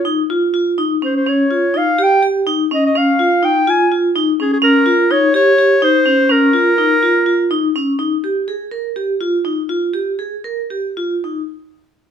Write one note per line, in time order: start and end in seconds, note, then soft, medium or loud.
0.05 0.18 D#4 medium
0.30 0.42 F4 medium
0.54 0.66 F4 medium
0.78 0.91 D#4 medium
1.02 1.15 C#4 medium
1.02 1.15 C5 medium
1.17 1.30 C5 medium
1.26 1.39 C#4 medium
1.26 1.79 C#5 medium
1.51 1.63 F4 medium
1.74 1.87 D#4 medium
1.74 2.04 F5 medium
1.99 2.11 G4 medium
2.03 2.26 G5 medium
2.23 2.35 G4 medium
2.47 2.59 D#4 medium
2.71 2.84 C#4 medium
2.71 2.84 D#5 medium
2.86 2.99 D#5 medium
2.95 3.08 C#4 medium
2.95 3.46 F5 medium
3.19 3.32 F4 medium
3.43 3.55 D#4 medium
3.43 3.71 G5 medium
3.67 3.80 F4 medium
3.67 3.93 G#5 medium
3.92 4.04 F4 medium
4.16 4.28 D#4 medium
4.40 4.52 C#4 medium
4.40 4.52 G#4 medium
4.53 4.58 G#4 medium
4.62 4.74 C#4 medium
4.62 5.13 A#4 medium
4.86 4.98 F4 medium
5.11 5.23 D#4 medium
5.11 5.35 C#5 loud
5.34 5.46 G4 medium
5.34 5.85 C#5 loud
5.58 5.71 G4 medium
5.82 5.94 D#4 medium
5.82 6.33 C5 loud
6.06 6.18 C#4 medium
6.29 6.42 C#4 medium
6.29 7.76 A#4 medium
6.53 6.66 F4 medium
6.78 6.90 D#4 medium
7.03 7.15 F4 medium
7.26 7.39 F4 medium
7.51 7.63 D#4 medium
7.76 7.88 C#4 medium
7.99 8.11 D#4 medium
8.24 8.36 G4 medium
8.48 8.60 G#4 medium
8.71 8.84 A#4 medium
8.96 9.09 G4 medium
9.21 9.33 F4 medium
9.45 9.57 D#4 medium
9.69 9.82 F4 medium
9.94 10.07 G4 medium
10.19 10.32 G#4 medium
10.44 10.58 A#4 medium
10.70 10.84 G4 soft
10.97 11.11 F4 medium
11.24 11.38 D#4 soft